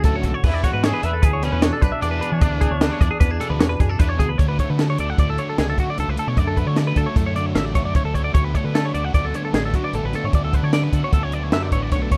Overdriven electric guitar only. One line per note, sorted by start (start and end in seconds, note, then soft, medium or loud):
0.04 0.30 F#3 medium
0.04 0.30 A3 medium
0.04 0.30 D4 medium
0.04 0.31 F#4 medium
0.45 0.70 E3 medium
0.45 0.70 B3 loud
0.45 0.70 D4 medium
0.45 0.71 G#4 medium
0.83 1.09 E3 medium
0.83 1.09 B3 medium
0.83 1.09 D4 medium
0.83 1.10 G#4 loud
1.42 1.69 E3 medium
1.42 1.69 B3 medium
1.42 1.68 D4 medium
1.42 1.68 G#4 medium
2.01 2.27 E3 medium
2.01 2.28 B3 medium
2.01 2.28 D4 medium
2.01 2.28 G#4 medium
2.41 2.67 E3 medium
2.41 2.67 B3 loud
2.41 2.68 D4 medium
2.41 2.68 G#4 medium
2.81 3.07 E3 medium
2.81 3.07 B3 medium
2.81 3.07 D4 loud
2.81 3.07 G#4 medium
3.40 3.66 E3 medium
3.40 3.66 B3 medium
3.40 3.66 D4 medium
3.40 3.66 G#4 loud
3.99 4.25 E3 medium
3.99 4.25 B3 medium
3.99 4.26 D4 medium
3.99 4.26 G#4 medium
4.39 4.78 D3 medium
4.39 4.60 F#3 medium
4.39 4.60 A3 medium
4.39 4.58 D4 medium
4.58 4.79 F#3 soft
4.58 4.80 A3 medium
4.58 4.81 D4 medium
4.78 5.17 D3 medium
4.78 5.00 F#3 medium
4.78 4.99 A3 medium
4.78 4.98 D4 medium
4.98 5.18 F#3 medium
4.98 5.19 A3 medium
4.98 5.20 D4 medium
5.18 5.57 D3 medium
5.18 5.58 F#3 medium
5.18 5.59 A3 medium
5.18 5.60 D4 medium
5.57 5.97 D3 medium
5.57 5.79 F#3 medium
5.57 5.78 A3 medium
5.57 5.77 D4 medium
5.77 5.98 F#3 medium
5.77 5.98 A3 medium
5.77 5.99 D4 medium
5.97 6.36 D3 medium
5.97 6.19 F#3 medium
5.97 6.18 A3 medium
5.97 6.17 D4 medium
6.17 6.37 F#3 medium
6.17 6.38 A3 medium
6.17 6.38 D4 medium
6.36 6.75 D3 medium
6.36 6.59 F#3 medium
6.36 6.58 A3 medium
6.36 6.56 D4 medium
6.57 6.77 F#3 medium
6.57 6.77 A3 medium
6.57 6.78 D4 medium
6.76 7.15 D3 medium
6.76 6.97 F#3 medium
6.76 6.96 A3 medium
6.76 6.95 D4 medium
6.95 7.15 F#3 medium
6.95 7.16 A3 medium
6.95 7.17 D4 medium
7.15 7.54 D3 medium
7.15 7.55 F#3 medium
7.15 7.56 A3 medium
7.15 7.56 D4 medium
7.54 7.94 D3 medium
7.54 7.77 F#3 medium
7.54 7.75 A3 medium
7.54 7.74 D4 medium
7.74 7.95 F#3 medium
7.74 7.96 A3 medium
7.74 7.96 D4 medium
7.94 8.33 D3 medium
7.94 8.16 F#3 medium
7.94 8.15 A3 medium
7.94 8.13 D4 medium
8.14 8.34 F#3 medium
8.14 8.35 A3 medium
8.14 8.35 D4 medium
8.33 8.73 D3 medium
8.33 8.56 F#3 medium
8.33 8.54 B3 medium
8.33 8.53 D4 medium
8.54 8.74 F#3 medium
8.54 8.75 B3 medium
8.54 8.76 D4 medium
8.74 9.13 D3 medium
8.74 8.96 F#3 medium
8.74 8.95 B3 medium
8.74 8.94 D4 medium
8.94 9.14 F#3 medium
8.94 9.15 B3 medium
8.94 9.15 D4 medium
9.13 9.52 D3 medium
9.13 9.54 F#3 medium
9.13 9.54 B3 medium
9.13 9.55 D4 medium
9.53 9.92 D3 medium
9.53 9.76 F#3 medium
9.53 9.74 B3 medium
9.53 9.73 D4 medium
9.74 9.93 F#3 medium
9.74 9.93 B3 medium
9.74 9.95 D4 medium
9.93 10.32 D3 medium
9.93 10.16 F#3 medium
9.93 10.14 B3 medium
9.93 10.13 D4 medium
10.13 10.33 F#3 medium
10.13 10.33 B3 medium
10.13 10.35 D4 medium
10.32 10.71 D3 medium
10.32 10.54 F#3 medium
10.32 10.52 B3 medium
10.32 10.52 D4 medium
10.52 10.72 F#3 medium
10.52 10.72 B3 medium
10.52 10.74 D4 medium
10.72 11.11 D3 medium
10.72 10.94 F#3 medium
10.72 10.93 B3 medium
10.72 10.92 D4 medium
10.92 11.12 F#3 soft
10.92 11.12 B3 medium
10.92 11.14 D4 medium
11.12 11.51 D3 medium
11.12 11.52 F#3 medium
11.12 11.52 B3 medium
11.12 11.54 D4 medium
11.51 11.91 D3 medium
11.51 11.73 F#3 medium
11.51 11.71 B3 medium
11.51 11.71 D4 medium
11.71 11.93 F#3 soft
11.71 11.92 B3 medium
11.71 11.94 D4 medium
11.91 12.17 D3 medium
11.91 12.13 F#3 medium
11.91 12.11 B3 medium
11.91 12.11 D4 medium
12.11 12.17 F#3 medium
12.11 12.17 B3 medium
12.11 12.17 D4 medium